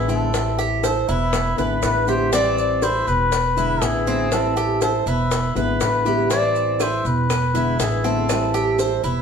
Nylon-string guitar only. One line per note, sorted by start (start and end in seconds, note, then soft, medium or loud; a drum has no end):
0.08 0.32 D3 medium
0.08 0.33 G#3 medium
0.08 0.33 B3 medium
0.08 0.32 E4 medium
0.32 1.32 E3 medium
0.32 1.32 G3 medium
0.32 1.33 C4 medium
0.32 1.33 E4 medium
1.33 muted nylon-string guitar stroke medium
1.57 1.81 D3 medium
1.57 1.82 G#3 medium
1.57 1.82 B3 medium
1.57 1.81 E4 medium
1.82 2.06 D3 soft
1.82 2.07 G#3 medium
1.82 2.06 B3 medium
1.82 2.05 E4 soft
2.07 2.31 D3 medium
2.07 2.32 G#3 medium
2.07 2.32 B3 medium
2.07 2.31 E4 medium
2.32 3.31 E3 medium
2.32 3.31 G3 medium
2.32 3.31 C4 medium
2.32 3.32 E4 medium
3.31 muted nylon-string guitar stroke medium
3.57 3.80 D3 medium
3.57 3.81 G#3 medium
3.57 3.81 B3 medium
3.57 3.81 E4 medium
3.81 4.05 D3 soft
3.81 4.06 G#3 soft
3.81 4.06 B3 medium
3.81 4.05 E4 medium
4.07 4.30 D3 medium
4.07 4.31 G#3 medium
4.07 4.31 B3 medium
4.07 4.30 E4 medium
4.31 5.31 E3 medium
4.31 5.30 G3 medium
4.31 5.31 C4 medium
4.31 5.31 E4 medium
5.31 muted nylon-string guitar stroke medium
5.55 5.79 D3 medium
5.55 5.80 G#3 medium
5.55 5.80 B3 medium
5.55 5.79 E4 medium
5.80 6.04 D3 soft
5.80 6.05 G#3 medium
5.80 6.05 B3 soft
5.80 6.04 E4 medium
6.05 6.29 D3 medium
6.05 6.30 G#3 medium
6.05 6.30 B3 medium
6.05 6.29 E4 medium
6.29 7.30 E3 medium
6.29 7.29 G3 medium
6.29 7.29 C4 medium
6.29 7.30 E4 medium
7.30 muted nylon-string guitar stroke medium
7.54 7.77 D3 medium
7.54 7.78 G#3 medium
7.54 7.79 B3 medium
7.54 7.78 E4 medium
7.79 8.03 D3 medium
7.79 8.04 G#3 medium
7.79 8.03 B3 medium
7.79 8.03 E4 medium
8.04 8.28 D3 medium
8.04 8.29 G#3 medium
8.04 8.28 B3 medium
8.04 8.28 E4 medium
8.29 9.22 E3 medium
8.29 9.22 G3 medium
8.29 9.22 C4 medium
8.29 9.22 E4 medium